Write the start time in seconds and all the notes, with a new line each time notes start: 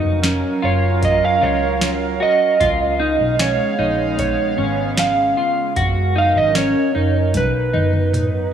Already playing: F#3 C#4 D#4 A#4 F5
0.04 F1
0.23 C#4, snare, closed hi-hat, tambourine
0.62 F#1 F4 C#5
1.03 D#5, kick, closed hi-hat
1.25 F5
1.42 C#2 F4 C#5
1.81 snare, closed hi-hat, tambourine
2.20 F#4 D#5
2.60 C#2 C#3 G#3 B3 F4 F5, kick, closed hi-hat
3.00 D#4
3.21 B1
3.39 C#4 C#5, snare, closed hi-hat, tambourine
3.79 A#1 D#4
4.19 C#5, kick, closed hi-hat
4.58 G#1 C#4
4.98 F5, snare, closed hi-hat, tambourine
5.37 F4
5.75 F#1 F#3 C#4 F#4 A#4, kick, closed hi-hat
6.16 D#4 F5
6.36 G#1 D#5
6.55 C#4 C#5, snare, closed hi-hat, tambourine
6.95 F#1 D#4
7.34 B1 F#3 B3 D#4 B4, kick, closed hi-hat, high tom
7.73 F#1 D#4, mid tom
7.93 mid tom
8.14 closed hi-hat, mid tom